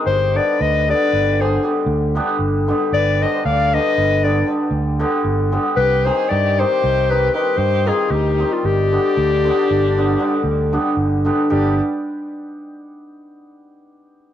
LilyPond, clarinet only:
\new Staff \with { instrumentName = "Clarinet" } { \time 11/8 \tempo 4 = 115 c''8 d''8 ees''8 d''4 c''8 r2 r8 | d''8 ees''8 f''8 ees''4 d''8 r2 r8 | b'8 c''8 d''8 c''4 b'8 b'8 c''8 aes'8 g'8. f'16 | g'1~ g'8 r4 |
g'8 r1 r4 | }